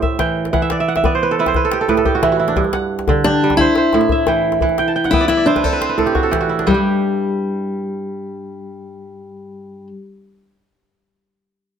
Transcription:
Already playing: kora A2 G4 C5
0.02 kora E5, djembe bass
0.19 kora E3 G5, djembe slap, djembe tone
0.37 djembe slap
0.45 djembe slap
0.53 kora E3 F#5, djembe slap, djembe bass
0.62 kora E5, djembe slap
0.70 kora D5, djembe slap
0.80 kora E5
0.88 kora F#5
0.96 kora E5, djembe slap
1.04 kora B3 D5, djembe tone, djembe bass
1.15 kora C5
1.23 kora B4
1.29 kora A4, djembe slap
1.39 kora E4 B4
1.46 kora C5, djembe slap, djembe tone
1.54 kora B4, djembe slap, djembe bass
1.65 kora A4
1.71 kora G4, djembe slap
1.81 kora A4
1.88 kora A2 B4, djembe slap, djembe tone
1.97 kora A4, djembe slap
2.05 kora G4, djembe bass
2.15 kora F#4
2.23 kora E3 E4, djembe slap, djembe tone
2.32 kora F#4
2.40 kora E4, djembe slap
2.48 kora D4, djembe slap
2.56 kora G2, djembe slap, djembe bass
2.64 djembe slap, djembe tone
2.73 kora F#5, djembe slap
2.99 djembe slap
3.08 kora D3, djembe tone, djembe bass
3.24 steel-string acoustic guitar D4, kora G4, djembe slap
3.44 kora G3
3.50 djembe slap, djembe tone
3.57 steel-string acoustic guitar E4, kora C5, djembe slap, djembe bass
3.75 kora C5, djembe slap
3.93 kora A2, djembe slap, djembe tone
4.01 djembe slap
4.09 kora E5, djembe bass
4.27 kora E3 G5, djembe slap, djembe tone
4.45 djembe slap
4.52 djembe slap
4.61 kora E3, djembe bass
4.69 djembe tone
4.78 kora G5, djembe slap
4.87 kora A5, djembe slap
4.96 kora G5
5.04 kora F#5, djembe slap
5.11 kora B3 E5, steel-string acoustic guitar E4, djembe tone, djembe bass
5.21 kora D5, djembe slap
5.28 steel-string acoustic guitar E4, kora E5, djembe slap
5.37 kora D5
5.46 steel-string acoustic guitar D4, kora E4 C5
5.56 kora B4, djembe slap, djembe tone
5.64 steel-string acoustic guitar C4, kora A4, djembe slap, djembe bass
5.73 kora B4
5.81 kora C5, djembe slap
5.89 kora B4
5.98 kora A2 A4, djembe slap, djembe tone
6.06 kora G4, djembe slap
6.15 kora F#4, djembe bass
6.23 kora A4
6.31 kora E3 G4, djembe slap, djembe tone
6.41 kora F#4
6.49 kora E4, djembe slap
6.59 kora D4, djembe slap
6.67 kora G2 G3, steel-string acoustic guitar G3, djembe bass
6.74 kora G4

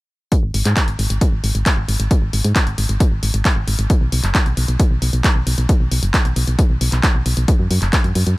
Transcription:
0.32 kick, closed hi-hat
0.43 fm bass G#1
0.54 fm bass G#1, open hi-hat
0.65 fm bass G#2, clap, closed hi-hat
0.77 kick, clap, closed hi-hat
0.88 fm bass G#1, closed hi-hat
0.99 fm bass G#1, open hi-hat
1.10 fm bass G#1, closed hi-hat
1.21 kick, closed hi-hat
1.32 fm bass G#1
1.44 fm bass G#1, open hi-hat
1.55 fm bass G#1, closed hi-hat
1.66 kick, clap, closed hi-hat
1.77 fm bass G#1
1.88 fm bass G#1, open hi-hat
2.00 fm bass G#1, closed hi-hat
2.11 kick, closed hi-hat
2.22 fm bass G#1
2.33 fm bass G#1, open hi-hat
2.44 fm bass G#2, closed hi-hat
2.56 kick, clap, closed hi-hat
2.67 fm bass G#1, closed hi-hat
2.78 fm bass G#1, open hi-hat
2.89 fm bass G#1, closed hi-hat
3.00 kick, closed hi-hat
3.12 fm bass G#1
3.23 fm bass G#1, open hi-hat
3.34 fm bass G#1, closed hi-hat
3.45 kick, clap, closed hi-hat
3.56 fm bass G#1
3.68 fm bass G#1, open hi-hat
3.79 fm bass G#1, closed hi-hat
3.90 kick, closed hi-hat
4.01 fm bass B1
4.12 fm bass B1, open hi-hat
4.24 fm bass F#1, clap, closed hi-hat
4.35 kick, clap, closed hi-hat
4.46 fm bass B1, closed hi-hat
4.57 fm bass B1, open hi-hat
4.68 fm bass B1, closed hi-hat
4.80 kick, closed hi-hat
4.91 fm bass B1
5.02 fm bass B1, open hi-hat
5.13 fm bass B1, closed hi-hat
5.24 kick, clap, closed hi-hat
5.35 fm bass B1
5.47 fm bass B1, open hi-hat
5.58 fm bass B1, closed hi-hat
5.69 kick, closed hi-hat
5.80 fm bass B1
5.91 fm bass B1, open hi-hat
6.03 fm bass F#1, closed hi-hat
6.14 kick, clap, closed hi-hat
6.25 fm bass B1, closed hi-hat
6.36 fm bass B1, open hi-hat
6.47 fm bass B1, closed hi-hat
6.59 kick, closed hi-hat
6.70 fm bass B1
6.81 fm bass B1, open hi-hat
6.92 fm bass B1, clap, closed hi-hat
7.03 kick, clap, closed hi-hat
7.15 fm bass B1
7.26 fm bass B1, open hi-hat
7.37 fm bass B1, closed hi-hat
7.48 kick, closed hi-hat
7.59 fm bass F#2
7.71 fm bass F#2, open hi-hat
7.82 fm bass F#1, clap, closed hi-hat
7.93 kick, clap, closed hi-hat
8.04 fm bass F#2, closed hi-hat
8.15 fm bass F#2, open hi-hat
8.27 fm bass F#2, closed hi-hat

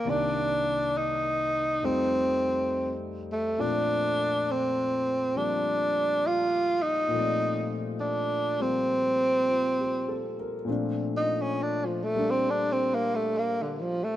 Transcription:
Already playing: tenor saxophone A#3
0.05 grand piano C2 C3 D#3 A#3 D5
0.10 tenor saxophone D4
0.97 tenor saxophone D#4
1.83 grand piano F2 F3 G3 A3 D#4, tenor saxophone C4
3.32 tenor saxophone A3
3.58 grand piano A#2 F3 A3 C4 D5, tenor saxophone D4
4.51 tenor saxophone C4
5.34 grand piano F3 G3 A#3 C4, tenor saxophone D4
6.27 tenor saxophone F4
6.82 tenor saxophone D#4
7.08 grand piano A#2 F3
7.14 grand piano A3 C4
7.19 grand piano D5
8.00 tenor saxophone D4
8.59 grand piano F3 G3 A#3 C4, tenor saxophone C4
9.49 grand piano F4
9.80 grand piano G4
10.09 grand piano A4
10.40 grand piano A#4
10.65 grand piano A#2 F3 A3 C4
10.70 grand piano D4
11.17 tenor saxophone D#4
11.41 tenor saxophone C#4
11.62 tenor saxophone D4
11.85 tenor saxophone F3
12.04 tenor saxophone A3
12.15 grand piano G3 A#3 D4
12.30 tenor saxophone C4
12.50 tenor saxophone D4
12.72 tenor saxophone C4
12.94 tenor saxophone A#3
13.15 tenor saxophone A3
13.38 tenor saxophone A#3
13.62 tenor saxophone D3
13.81 tenor saxophone F3
14.04 tenor saxophone A3

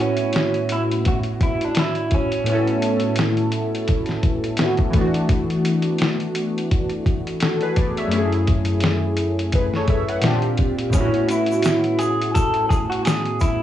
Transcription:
Already playing: synth keys A2 B3 C#4 E4 F#4
0.01 clean electric guitar C#4
0.17 closed hi-hat
0.33 snare, closed hi-hat
0.54 closed hi-hat
0.69 clean electric guitar E4, closed hi-hat
0.91 closed hi-hat
1.05 clean electric guitar F#4, kick, closed hi-hat
1.23 closed hi-hat
1.41 clean electric guitar E4, kick, closed hi-hat
1.61 clean electric guitar D4, closed hi-hat
1.75 snare, closed hi-hat
1.79 clean electric guitar E4
1.95 closed hi-hat
2.11 clean electric guitar C#4, kick, closed hi-hat
2.32 closed hi-hat
2.44 synth keys A2 B3, closed hi-hat
2.49 synth keys C#4 E4
2.55 synth keys A4
2.67 closed hi-hat
2.82 closed hi-hat
3.00 closed hi-hat
3.16 snare, closed hi-hat
3.37 closed hi-hat
3.52 closed hi-hat
3.75 closed hi-hat
3.88 kick, closed hi-hat
4.06 snare, closed hi-hat
4.23 kick, closed hi-hat
4.44 closed hi-hat
4.57 synth keys A2 B3, snare, closed hi-hat
4.61 synth keys C#4 E4 F#4
4.77 kick, closed hi-hat
4.90 synth keys E3 A3, kick, closed hi-hat
4.95 synth keys B3 D4
5.01 synth keys F#4
5.14 closed hi-hat
5.29 kick, closed hi-hat
5.50 closed hi-hat
5.65 closed hi-hat
5.82 closed hi-hat
5.99 snare, closed hi-hat
6.20 closed hi-hat
6.35 closed hi-hat
6.58 closed hi-hat
6.71 kick, closed hi-hat
6.89 closed hi-hat
7.06 kick, closed hi-hat
7.27 closed hi-hat
7.40 synth keys F#4 A4, snare, closed hi-hat
7.61 synth keys G#4 B4, closed hi-hat
7.76 synth keys B4 D5, kick, closed hi-hat
7.97 synth keys C#5 E5, closed hi-hat
8.07 synth keys F#2 A3
8.11 synth keys C#4 E4, closed hi-hat
8.18 synth keys G#4
8.32 closed hi-hat
8.47 kick, closed hi-hat
8.65 closed hi-hat
8.80 snare, closed hi-hat
9.17 closed hi-hat
9.39 closed hi-hat
9.52 synth keys G#4 B4, kick, closed hi-hat
9.74 synth keys A4 C#5, snare
9.88 synth keys C#5 E5, kick, closed hi-hat
10.09 synth keys F#5, closed hi-hat
10.22 synth keys A#2 C4 D4, snare, closed hi-hat
10.26 synth keys F4 G4
10.42 closed hi-hat
10.57 kick, closed hi-hat
10.79 closed hi-hat
10.90 synth keys A2 B3, kick, closed hi-hat, shaker
10.95 clean electric guitar C#4, synth keys C#4 E4
11.00 synth keys F#4
11.14 closed hi-hat
11.28 clean electric guitar E4, closed hi-hat, shaker
11.46 closed hi-hat
11.52 shaker
11.62 snare, closed hi-hat, shaker
11.84 closed hi-hat
11.99 clean electric guitar G#4, closed hi-hat, shaker
12.21 closed hi-hat
12.34 clean electric guitar A4, kick, closed hi-hat, shaker
12.54 closed hi-hat
12.69 clean electric guitar G#4, kick, closed hi-hat, shaker
12.90 clean electric guitar F#4, closed hi-hat
13.05 clean electric guitar G#4, snare, closed hi-hat, shaker
13.25 closed hi-hat
13.40 clean electric guitar E4, kick, closed hi-hat, shaker

